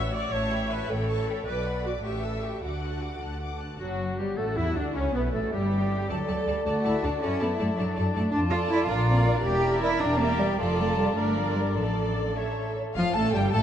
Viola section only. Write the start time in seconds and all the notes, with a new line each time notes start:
Already playing: E5
0.14 D5
0.32 C#5
0.70 B4
0.89 A4
1.46 B4
1.84 F#4
2.03 G4
2.23 A4
2.43 G4
2.63 F#4
3.80 F#3
4.18 G3
4.38 A3
4.57 E4
4.76 D4
4.95 C#4
5.14 B3
5.33 A3
5.53 G3
6.09 A4 D5
6.28 A4 D5
6.48 A4 D5
6.66 A4 D5
6.84 A4 D5
7.03 A4 D5
7.22 A4 D5
7.41 A4 D5
7.59 A4 D5
7.78 A4 D5
7.95 A4 D5
8.14 A4 D5
8.52 A4 D5
8.89 A#4 D5
9.07 A#4 D5
9.63 A#4 D5
10.20 A#4 D5
10.58 A4 D5
11.17 A#4 D5
11.76 A4 D5
12.36 A4 C#5
12.96 F3
13.15 A3
13.34 G3
13.54 A3